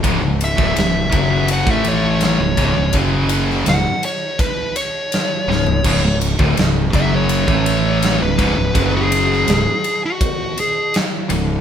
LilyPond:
<<
  \new Staff \with { instrumentName = "Lead electric guitar" } { \time 4/4 \key cis \minor \tempo 4 = 83 r8 e''4. fis''16 e''16 cis''8 cis''4 | r4 fis''8 cis''8 b'8 cis''4.~ | cis''8 r4 e''16 cis''4. b'8.~ | b'16 gis'4. fis'8. gis'8 r4 | }
  \new Staff \with { instrumentName = "Distorted electric guitar" } { \clef bass \time 4/4 \key cis \minor <cis, gis,>16 <cis, gis,>8 <d, a,>16 <cis, gis,>8 <fis, cis fis>8. <a, e a>4 <cis, gis,>16 <cis, gis,>16 <cis, gis,>16 | <fis, cis fis>4 <cis, gis,>16 r2 r16 <cis, gis,>8 | <cis, gis,>16 <cis, gis,>8 <d, a,>16 <cis, gis,>8 <fis, cis fis>8. <a, e a>4 <cis, gis,>16 <cis, gis,>16 <cis, gis,>16 | <fis, cis fis>4 <cis, gis,>16 r2 r16 <cis, gis,>8 | }
  \new Staff \with { instrumentName = "Distorted electric guitar" } { \clef bass \time 4/4 \key cis \minor <cis, gis,>16 <cis, gis,>8 <d, a,>16 <cis, gis,>8 <fis, cis fis>8. <a, e a>4 <cis, gis,>16 <cis, gis,>16 <cis, gis,>16 | <fis, cis fis>4 <cis, gis,>16 r2 r16 <cis, gis,>8 | <cis, gis,>16 <cis, gis,>8 <d, a,>16 <cis, gis,>8 <fis, cis fis>8. <a, e a>4 <cis, gis,>16 <cis, gis,>16 <cis, gis,>16 | <fis, cis fis>4 <cis, gis,>16 r2 r16 <cis, gis,>8 | }
  \new Staff \with { instrumentName = "Fingered electric bass" } { \clef bass \time 4/4 \key cis \minor cis,,16 cis,,8 d,,16 cis,,8 fis,,8. a,,4 cis,,16 cis,,16 cis,,16 | fis,,4 cis,,16 r2 r16 cis,,8 | cis,,16 cis,,8 d,,16 cis,,8 fis,,8. a,,4 cis,,16 cis,,16 cis,,16 | fis,,4 cis,,16 r2 r16 cis,,8 | }
  \new DrumStaff \with { instrumentName = "Drums" } \drummode { \time 4/4 <bd cymr>8 cymr16 <bd sn>16 <cymr sn>8 <bd cymr>8 cymr16 bd16 cymr8 <cymr sn>8 <bd cymr sn>8 | <bd cymr>8 cymr16 sn16 <cymr sn>8 cymr8 <bd cymr>8 cymr8 <cymr sn>8 sn16 tomfh16 | <cymc bd>8 cymr16 <bd sn>16 <cymr sn>8 <bd cymr>8 cymr16 bd16 cymr8 <cymr sn>8 <bd cymr sn>8 | <bd cymr>8 cymr16 sn16 <cymr sn>8 cymr8 <bd cymr>8 cymr8 <cymr sn>8 cymr8 | }
>>